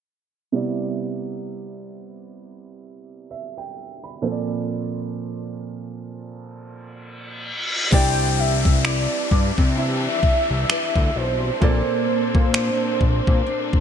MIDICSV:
0, 0, Header, 1, 9, 480
1, 0, Start_track
1, 0, Key_signature, 0, "major"
1, 0, Tempo, 923077
1, 281, Time_signature, 4, 2, 24, 8
1, 7177, End_track
2, 0, Start_track
2, 0, Title_t, "Soft synth lead"
2, 0, Program_c, 0, 80
2, 4124, Note_on_c, 0, 79, 118
2, 4364, Note_on_c, 0, 76, 106
2, 4371, Note_off_c, 0, 79, 0
2, 4603, Note_on_c, 0, 74, 92
2, 4611, Note_off_c, 0, 76, 0
2, 4842, Note_off_c, 0, 74, 0
2, 4844, Note_on_c, 0, 74, 92
2, 4917, Note_off_c, 0, 74, 0
2, 5082, Note_on_c, 0, 76, 108
2, 5804, Note_on_c, 0, 72, 91
2, 5812, Note_off_c, 0, 76, 0
2, 7177, Note_off_c, 0, 72, 0
2, 7177, End_track
3, 0, Start_track
3, 0, Title_t, "Nylon-string guitar"
3, 0, Program_c, 1, 24
3, 4120, Note_on_c, 1, 60, 82
3, 4123, Note_on_c, 1, 74, 68
3, 4601, Note_on_c, 1, 64, 56
3, 5075, Note_off_c, 1, 64, 0
3, 5081, Note_on_c, 1, 64, 68
3, 5554, Note_off_c, 1, 64, 0
3, 5560, Note_on_c, 1, 64, 64
3, 5563, Note_on_c, 1, 71, 65
3, 5564, Note_off_c, 1, 74, 0
3, 5566, Note_on_c, 1, 74, 72
3, 5802, Note_off_c, 1, 71, 0
3, 6039, Note_off_c, 1, 60, 0
3, 6041, Note_on_c, 1, 58, 78
3, 6042, Note_off_c, 1, 74, 0
3, 6044, Note_on_c, 1, 72, 67
3, 6096, Note_off_c, 1, 64, 0
3, 6522, Note_on_c, 1, 62, 59
3, 7000, Note_off_c, 1, 62, 0
3, 7002, Note_on_c, 1, 62, 63
3, 7177, Note_off_c, 1, 58, 0
3, 7177, Note_off_c, 1, 62, 0
3, 7177, Note_off_c, 1, 72, 0
3, 7177, End_track
4, 0, Start_track
4, 0, Title_t, "Grand piano"
4, 0, Program_c, 2, 0
4, 272, Note_on_c, 2, 48, 62
4, 276, Note_on_c, 2, 55, 63
4, 280, Note_on_c, 2, 59, 57
4, 284, Note_on_c, 2, 64, 59
4, 289, Note_on_c, 2, 74, 71
4, 388, Control_c, 2, 64, 127
4, 1720, Note_on_c, 2, 76, 59
4, 1853, Note_off_c, 2, 76, 0
4, 1859, Note_on_c, 2, 79, 62
4, 2088, Note_off_c, 2, 79, 0
4, 2099, Note_on_c, 2, 83, 61
4, 2176, Note_off_c, 2, 48, 0
4, 2178, Note_off_c, 2, 55, 0
4, 2180, Note_off_c, 2, 59, 0
4, 2182, Note_off_c, 2, 64, 0
4, 2184, Note_off_c, 2, 74, 0
4, 2193, Note_on_c, 2, 46, 65
4, 2197, Note_on_c, 2, 53, 64
4, 2201, Note_on_c, 2, 60, 60
4, 2205, Note_on_c, 2, 69, 62
4, 2207, Control_c, 2, 64, 0
4, 2209, Note_on_c, 2, 72, 59
4, 2243, Note_on_c, 2, 74, 69
4, 2244, Note_off_c, 2, 72, 0
4, 2285, Control_c, 2, 64, 127
4, 2327, Note_off_c, 2, 83, 0
4, 3856, Note_off_c, 2, 46, 0
4, 3858, Note_off_c, 2, 53, 0
4, 3860, Note_off_c, 2, 60, 0
4, 3862, Note_off_c, 2, 69, 0
4, 3881, Note_off_c, 2, 74, 0
4, 3887, Control_c, 2, 64, 0
4, 4112, Note_on_c, 2, 60, 59
4, 4116, Note_on_c, 2, 55, 55
4, 4120, Note_on_c, 2, 62, 56
4, 4125, Note_on_c, 2, 64, 55
4, 4128, Note_on_c, 2, 74, 65
4, 4225, Control_c, 2, 64, 127
4, 6016, Note_off_c, 2, 60, 0
4, 6018, Note_off_c, 2, 55, 0
4, 6020, Note_off_c, 2, 62, 0
4, 6022, Note_off_c, 2, 64, 0
4, 6024, Note_off_c, 2, 74, 0
4, 6033, Note_on_c, 2, 46, 57
4, 6037, Note_on_c, 2, 58, 57
4, 6041, Note_on_c, 2, 60, 57
4, 6046, Note_on_c, 2, 69, 57
4, 6047, Control_c, 2, 64, 0
4, 6050, Note_on_c, 2, 74, 67
4, 6131, Control_c, 2, 64, 127
4, 7177, Note_off_c, 2, 46, 0
4, 7177, Note_off_c, 2, 58, 0
4, 7177, Note_off_c, 2, 60, 0
4, 7177, Note_off_c, 2, 69, 0
4, 7177, Note_off_c, 2, 74, 0
4, 7177, End_track
5, 0, Start_track
5, 0, Title_t, "String section"
5, 0, Program_c, 3, 48
5, 4119, Note_on_c, 3, 52, 71
5, 4119, Note_on_c, 3, 60, 75
5, 4120, Note_on_c, 3, 55, 68
5, 4120, Note_on_c, 3, 62, 81
5, 6021, Note_off_c, 3, 52, 0
5, 6021, Note_off_c, 3, 55, 0
5, 6021, Note_off_c, 3, 62, 0
5, 6039, Note_on_c, 3, 62, 81
5, 6039, Note_on_c, 3, 69, 68
5, 6040, Note_on_c, 3, 58, 71
5, 7177, Note_off_c, 3, 58, 0
5, 7177, Note_off_c, 3, 60, 0
5, 7177, Note_off_c, 3, 62, 0
5, 7177, Note_off_c, 3, 69, 0
5, 7177, End_track
6, 0, Start_track
6, 0, Title_t, "Analog synth bass"
6, 0, Program_c, 4, 38
6, 4122, Note_on_c, 4, 36, 108
6, 4720, Note_off_c, 4, 36, 0
6, 4844, Note_on_c, 4, 43, 90
6, 4949, Note_off_c, 4, 43, 0
6, 4983, Note_on_c, 4, 48, 94
6, 5242, Note_off_c, 4, 48, 0
6, 5320, Note_on_c, 4, 36, 45
6, 5376, Note_off_c, 4, 36, 0
6, 5463, Note_on_c, 4, 36, 85
6, 5538, Note_off_c, 4, 36, 0
6, 5699, Note_on_c, 4, 38, 99
6, 5776, Note_off_c, 4, 38, 0
6, 5803, Note_on_c, 4, 35, 86
6, 5985, Note_off_c, 4, 35, 0
6, 6043, Note_on_c, 4, 34, 100
6, 6148, Note_off_c, 4, 34, 0
6, 6284, Note_on_c, 4, 46, 46
6, 6338, Note_off_c, 4, 46, 0
6, 6422, Note_on_c, 4, 46, 89
6, 6604, Note_off_c, 4, 46, 0
6, 6765, Note_on_c, 4, 34, 97
6, 6870, Note_off_c, 4, 34, 0
6, 6904, Note_on_c, 4, 46, 93
6, 6979, Note_off_c, 4, 46, 0
6, 7142, Note_on_c, 4, 34, 45
6, 7177, Note_off_c, 4, 34, 0
6, 7177, End_track
7, 0, Start_track
7, 0, Title_t, "Downlifter"
7, 0, Program_c, 5, 103
7, 4121, Note_on_c, 5, 60, 81
7, 7177, Note_off_c, 5, 60, 0
7, 7177, End_track
8, 0, Start_track
8, 0, Title_t, "Reverse cymbal"
8, 0, Program_c, 6, 119
8, 3160, Note_on_c, 6, 60, 77
8, 4120, Note_off_c, 6, 60, 0
8, 7177, End_track
9, 0, Start_track
9, 0, Title_t, "Drums"
9, 4120, Note_on_c, 9, 36, 104
9, 4121, Note_on_c, 9, 49, 86
9, 4172, Note_off_c, 9, 36, 0
9, 4173, Note_off_c, 9, 49, 0
9, 4500, Note_on_c, 9, 36, 90
9, 4552, Note_off_c, 9, 36, 0
9, 4600, Note_on_c, 9, 26, 114
9, 4652, Note_off_c, 9, 26, 0
9, 4843, Note_on_c, 9, 36, 90
9, 4895, Note_off_c, 9, 36, 0
9, 4982, Note_on_c, 9, 36, 91
9, 5034, Note_off_c, 9, 36, 0
9, 5319, Note_on_c, 9, 36, 83
9, 5371, Note_off_c, 9, 36, 0
9, 5562, Note_on_c, 9, 26, 107
9, 5614, Note_off_c, 9, 26, 0
9, 5697, Note_on_c, 9, 36, 87
9, 5749, Note_off_c, 9, 36, 0
9, 6041, Note_on_c, 9, 36, 103
9, 6093, Note_off_c, 9, 36, 0
9, 6420, Note_on_c, 9, 36, 92
9, 6472, Note_off_c, 9, 36, 0
9, 6522, Note_on_c, 9, 26, 119
9, 6574, Note_off_c, 9, 26, 0
9, 6764, Note_on_c, 9, 36, 86
9, 6816, Note_off_c, 9, 36, 0
9, 6902, Note_on_c, 9, 36, 89
9, 6954, Note_off_c, 9, 36, 0
9, 7141, Note_on_c, 9, 36, 83
9, 7177, Note_off_c, 9, 36, 0
9, 7177, End_track
0, 0, End_of_file